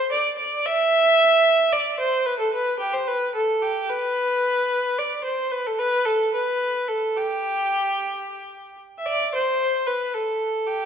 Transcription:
0.11 D5
0.38 D5
0.66 E5
1.72 D5
2.00 C5
2.26 B4
2.39 A4
2.53 B4
2.79 G4
2.94 C5
3.08 B4
3.35 A4
3.62 G4
3.89 B4
4.99 D5
5.24 C5
5.52 B4
5.67 A4
5.79 B4
6.05 A4
6.34 B4
6.88 A4
7.17 G4
8.98 E5
9.06 D5
9.34 C5
9.87 B4
10.14 A4
10.67 G4

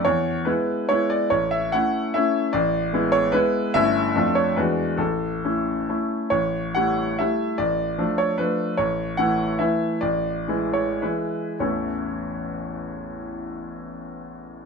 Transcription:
0.05 E2 C#5
0.45 G#3 B3 E4 B4
0.89 G#3 B3 E4 C#5
1.10 D5
1.30 A1 C#5
1.51 E5
1.72 A3 C#4 E4 F#5
2.14 A3 C#4 E4 E5
2.53 A1 D5
2.93 G#3 B3 E4
3.12 C#5
3.32 G#3 B3 E4 B4
3.74 G1 A3 C#4 E4 E5
4.15 F2 A3 D4 F4
4.35 C#5
4.56 E2 G#3 D4 F#4 B4
4.97 A1 A4
5.44 A3 C#4 E4
5.89 A3 C#4 E4
6.30 A1 C#5
6.75 G3 A3 E4 F#5
7.19 G3 A3 E4 E5
7.58 A1 D5
7.98 F3 A3 D4
8.18 C#5
8.38 F3 A3 D4 B4
8.77 A1 C#5
9.17 E3 A3 E4 F#5
9.59 E3 A3 E4 E5
10.01 A1 D5
10.48 E3 G#3 E4
10.73 C#5
11.02 E3 G#3 E4 B4
11.59 A1 E2 E3 A3 C#4 E4 C#5

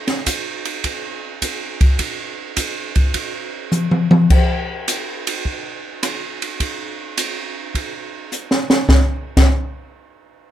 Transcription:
0.07 snare, ride
0.26 kick, hi-hat pedal, ride
0.65 ride
0.84 kick, ride
1.42 kick, hi-hat pedal, ride
1.81 kick, ride
1.99 kick, ride
2.57 kick, hi-hat pedal, ride
2.96 kick, ride
3.14 kick, ride
3.72 hi-hat pedal, high tom
3.91 high tom
4.11 high tom
4.30 kick, crash
4.88 hi-hat pedal, ride
5.27 ride
5.45 kick
6.03 cross-stick, hi-hat pedal, ride
6.42 ride
6.60 kick, ride
7.17 hi-hat pedal, ride
7.75 kick, ride
8.32 hi-hat pedal
8.51 snare
8.70 snare
8.89 kick, snare
9.37 kick, snare, crash

